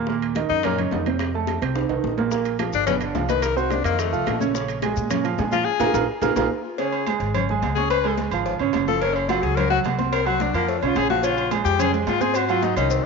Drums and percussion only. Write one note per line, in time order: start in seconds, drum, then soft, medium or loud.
0.07 high bongo medium
0.07 high conga soft
0.22 high conga soft
0.22 high timbale medium
0.35 high bongo medium
0.35 high conga loud
0.35 high timbale medium
0.35 low timbale medium
0.49 high bongo soft
0.63 high bongo medium
0.63 high conga soft
0.63 low conga medium
0.63 high timbale medium
0.78 high bongo soft
0.78 high conga soft
0.78 low conga medium
0.78 high timbale medium
0.91 high bongo soft
0.91 low bongo medium
0.91 high conga medium
0.91 low timbale medium
1.06 high bongo soft
1.06 high conga medium
1.06 high timbale medium
1.19 high bongo medium
1.19 high timbale medium
1.34 high conga soft
1.47 high bongo medium
1.47 high conga medium
1.47 high timbale medium
1.47 low timbale medium
1.61 high bongo soft
1.61 high conga soft
1.61 high timbale medium
1.76 high bongo medium
1.76 high conga soft
1.76 high timbale medium
1.89 high bongo soft
1.89 high conga soft
1.89 high timbale medium
2.04 high bongo soft
2.04 low bongo medium
2.04 high conga medium
2.18 high bongo soft
2.18 high conga medium
2.18 low timbale medium
2.31 high bongo medium
2.31 maracas medium
2.45 high conga soft
2.45 high timbale medium
2.45 maracas soft
2.59 high bongo medium
2.59 high conga medium
2.59 high timbale medium
2.59 low timbale medium
2.59 maracas soft
2.73 high bongo soft
2.73 high conga soft
2.73 maracas medium
2.87 high bongo medium
2.87 high conga soft
2.87 low conga medium
2.87 high timbale medium
2.87 maracas medium
3.01 high bongo soft
3.01 high conga soft
3.01 high timbale medium
3.01 maracas soft
3.15 high bongo soft
3.15 low bongo medium
3.15 high conga medium
3.15 low timbale medium
3.15 maracas soft
3.29 high bongo soft
3.29 high conga medium
3.29 high timbale medium
3.29 maracas medium
3.42 high bongo medium
3.42 high conga soft
3.42 high timbale medium
3.42 maracas medium
3.57 high conga soft
3.57 maracas soft
3.70 high bongo medium
3.70 high conga medium
3.70 high timbale medium
3.70 low timbale medium
3.70 maracas soft
3.84 high bongo soft
3.84 high conga soft
3.84 high timbale medium
3.84 maracas medium
3.99 high bongo medium
3.99 high conga soft
3.99 high timbale medium
3.99 maracas medium
4.13 high bongo soft
4.13 high conga soft
4.13 maracas soft
4.26 high bongo soft
4.26 low bongo medium
4.26 high conga medium
4.26 high timbale medium
4.26 low timbale medium
4.26 maracas soft
4.40 high bongo soft
4.40 high conga medium
4.40 maracas medium
4.54 high bongo medium
4.54 high conga soft
4.54 maracas medium
4.68 high conga soft
4.68 high timbale medium
4.68 maracas soft
4.82 high bongo medium
4.82 high conga loud
4.82 high timbale medium
4.82 low timbale medium
4.82 maracas soft
4.96 high bongo soft
4.96 high conga soft
4.96 maracas medium
5.10 high bongo medium
5.10 high conga soft
5.10 low conga medium
5.10 high timbale medium
5.10 maracas medium
5.24 high bongo soft
5.24 high conga soft
5.24 high timbale medium
5.24 maracas soft
5.38 high bongo soft
5.38 low bongo medium
5.38 high conga medium
5.38 low timbale medium
5.38 maracas soft
5.52 high bongo soft
5.52 high conga medium
5.52 high timbale medium
5.52 maracas medium
5.80 high bongo loud
5.80 high conga loud
5.80 high timbale loud
5.80 maracas loud
5.94 high bongo loud
5.94 high conga loud
5.94 high timbale loud
5.94 maracas loud
6.22 high bongo loud
6.22 high conga loud
6.22 high timbale loud
6.22 maracas loud
6.36 high bongo loud
6.36 high conga loud
6.36 high timbale loud
6.36 maracas loud
6.78 cowbell loud
6.78 high conga soft
6.78 low agogo medium
6.92 high conga soft
6.92 low agogo medium
7.07 cowbell medium
7.07 high conga medium
7.07 low timbale medium
7.07 low agogo loud
7.20 cowbell medium
7.20 high conga soft
7.34 cowbell loud
7.34 high conga soft
7.34 low conga medium
7.34 low agogo loud
7.49 high conga soft
7.49 low conga medium
7.62 cowbell medium
7.62 high conga medium
7.62 low timbale medium
7.62 low agogo medium
7.76 cowbell medium
7.76 high conga medium
7.90 cowbell loud
7.90 high conga soft
7.90 low agogo loud
8.04 high conga soft
8.04 low agogo medium
8.18 cowbell medium
8.18 high conga loud
8.18 low timbale medium
8.31 cowbell medium
8.31 high conga soft
8.31 low agogo loud
8.46 cowbell loud
8.46 high conga soft
8.59 high conga soft
8.59 low agogo medium
8.73 cowbell medium
8.73 high conga medium
8.73 low timbale medium
8.73 low agogo loud
8.87 cowbell medium
8.87 high conga medium
9.01 cowbell loud
9.01 high conga soft
9.01 low agogo medium
9.15 high conga soft
9.15 low agogo medium
9.29 cowbell medium
9.29 high conga loud
9.29 low timbale medium
9.29 low agogo loud
9.43 cowbell medium
9.43 high conga soft
9.57 cowbell loud
9.57 high conga soft
9.57 low conga medium
9.57 low agogo loud
9.71 high conga soft
9.85 cowbell medium
9.85 high conga medium
9.85 low timbale medium
9.85 low agogo medium
9.99 cowbell medium
9.99 high conga medium
10.12 cowbell loud
10.12 high conga soft
10.12 low agogo loud
10.26 high conga soft
10.26 low agogo medium
10.40 cowbell medium
10.40 high conga loud
10.40 low timbale medium
10.54 cowbell medium
10.54 low agogo loud
10.68 cowbell loud
10.68 high conga soft
10.82 high conga soft
10.82 low agogo medium
10.95 cowbell medium
10.95 high conga medium
10.95 low timbale medium
10.95 low agogo loud
11.10 cowbell medium
11.10 high conga medium
11.23 cowbell loud
11.23 high conga soft
11.23 low agogo medium
11.23 maracas medium
11.37 high conga soft
11.37 low agogo medium
11.37 maracas soft
11.51 cowbell medium
11.51 high conga medium
11.51 low timbale medium
11.51 low agogo loud
11.51 maracas soft
11.66 cowbell medium
11.66 high conga soft
11.66 maracas medium
11.79 cowbell loud
11.79 high conga soft
11.79 low conga medium
11.79 low agogo loud
11.79 maracas medium
11.94 high conga soft
11.94 maracas soft
12.07 cowbell medium
12.07 high conga medium
12.07 low timbale medium
12.07 low agogo medium
12.07 maracas soft
12.21 cowbell medium
12.21 high conga medium
12.21 maracas medium
12.34 cowbell loud
12.34 high conga soft
12.34 low agogo loud
12.34 maracas medium
12.49 high conga soft
12.49 low agogo medium
12.49 maracas soft
12.62 cowbell medium
12.62 high conga loud
12.62 low timbale medium
12.62 maracas soft
12.76 cowbell medium
12.76 high conga soft
12.76 low agogo loud
12.76 maracas medium
12.90 cowbell loud
12.90 high conga soft
12.90 maracas medium